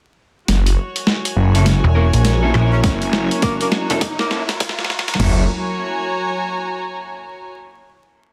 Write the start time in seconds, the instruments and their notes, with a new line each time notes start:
0.48 detuned saw bass F#1, ambient pad F#3 E4 A#4 A#5, string section F#4, snare, closed hi-hat, riser
0.66 string section C#5, closed hi-hat
0.96 closed hi-hat
1.05 string section G#5, snare
1.25 closed hi-hat
1.36 detuned saw bass F#1
1.55 clean electric guitar A#3 C#4 E4 A4, closed hi-hat
1.66 snare, closed hi-hat
1.84 fm bass E1
1.95 clean electric guitar A#3 C#4 E4 A#4
2.13 detuned saw bass A#1, closed hi-hat
2.25 snare, closed hi-hat
2.43 clean electric guitar A#3 C#4 E4 A4
2.54 fm bass A#1, clean electric guitar A#3 C#4 E4 A#4, cross-stick
2.73 tenor saxophone C#4
2.83 detuned saw bass F#1, tenor saxophone C#4, kick, snare, closed hi-hat
3.02 closed hi-hat
3.13 snare
3.31 closed hi-hat
3.42 tenor saxophone A#3, kick, snare, closed hi-hat
3.61 tenor saxophone A#3, closed hi-hat
3.72 snare
3.90 fm bass E1, clean electric guitar A#3 C#4 E4 A4, closed hi-hat
4.01 kick, snare, closed hi-hat
4.19 tenor saxophone A#3, snare
4.31 tenor saxophone A#3, clean electric guitar A#3 C#4 E4 A4, snare
4.49 snare, closed hi-hat
4.60 kick, snare, closed hi-hat
4.69 snare
4.79 snare
4.84 snare
4.90 snare
4.99 snare
5.08 snare, closed hi-hat
5.14 snare
5.19 detuned saw bass F#1, clean electric guitar A#3 C#4 E4 A4, string section F#4, snare, floor tom, crash
5.32 string section C#5
5.40 string section G#5
5.47 string section A#5